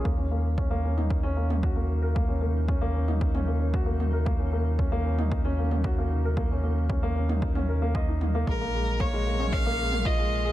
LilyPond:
<<
  \new Staff \with { instrumentName = "Violin" } { \time 4/4 \key ees \dorian \tempo 4 = 114 r1 | r1 | r1 | r1 |
bes'4 des''4 f''4 ees''4 | }
  \new Staff \with { instrumentName = "Upright piano" } { \time 4/4 \key ees \dorian bes16 des'16 bes16 r16 des'16 bes16 des'16 ees'16 r16 des'16 bes16 des'16 ges'16 bes16 r16 bes'16 | bes16 des'16 bes16 r16 des'16 bes16 des'16 ees'16 r16 des'16 bes16 des'16 ges'16 bes16 r16 bes'16 | bes16 des'16 bes16 r16 des'16 bes16 des'16 ees'16 r16 des'16 bes16 des'16 ges'16 bes16 r16 bes'16 | bes16 des'16 bes16 r16 des'16 bes16 des'16 ees'16 r16 des'16 bes'16 bes16 ees''16 ees'16 ees'16 bes16 |
aes16 bes16 aes16 r16 bes16 aes16 bes16 des'16 r16 bes16 aes16 bes16 f'16 aes16 r16 aes'16 | }
  \new Staff \with { instrumentName = "Ambient pad" } { \clef bass \time 4/4 \key ees \dorian <des ges ees'>1~ | <des ges ees'>1~ | <des ges ees'>1~ | <des ges ees'>1 |
<bes, aes des'>1 | }
  \new Staff \with { instrumentName = "Analog synth bass" } { \clef bass \time 4/4 \key ees \dorian ees,1~ | ees,1~ | ees,1~ | ees,1 |
bes,,1 | }
  \new DrumStaff \with { instrumentName = "Drums" } \drummode { \time 4/4 bd4 bd8. toml16 bd8. toml16 bd4 | bd4 bd8. toml16 bd16 toml8. bd8 toml8 | bd4 bd8. toml16 bd8. toml16 bd4 | bd4 bd8. toml16 bd16 toml8. bd8 toml8 |
bd4 bd8. toml16 bd8. toml16 bd4 | }
>>